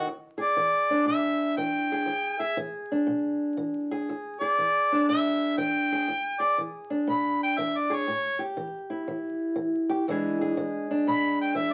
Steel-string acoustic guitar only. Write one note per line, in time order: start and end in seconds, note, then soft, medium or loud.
0.07 0.54 E2 medium
0.38 1.92 G#4 medium
0.57 1.03 E3 medium
0.90 2.09 D4 medium
1.06 1.53 B2 medium
1.57 2.04 E3 medium
1.92 2.39 G#4 medium
2.06 2.53 E2 medium
2.40 3.91 G#4 medium
2.57 3.04 E3 medium
2.92 4.12 D4 medium
3.07 3.54 B2 medium
3.57 4.04 E3 medium
3.91 4.41 G#4 medium
4.09 4.55 E2 medium
4.41 5.91 G#4 medium
4.58 5.05 E3 medium
4.92 6.07 D4 medium
5.09 5.55 B2 medium
5.58 6.04 E3 medium
5.92 6.07 G#4 medium
6.08 6.55 E2 medium
6.40 7.89 G#4 medium
6.58 7.05 E3 medium
6.90 8.06 D4 medium
7.07 7.54 B2 medium
7.58 8.04 E3 medium
7.90 8.06 G#4 medium
8.07 8.54 A2 medium
8.39 9.88 G4 medium
8.57 9.03 E3 medium
8.90 10.09 E4 medium
9.08 9.54 E3 medium
9.56 10.02 E3 medium
9.89 10.05 G4 medium
10.08 10.53 E2 medium
10.08 10.57 E3 medium
10.08 11.74 G#3 medium
10.08 10.90 D4 medium
10.08 10.41 G#4 medium
10.41 11.74 G#4 medium
10.57 11.03 E3 medium
10.91 11.74 D4 medium
11.07 11.52 B2 medium
11.55 11.74 E3 medium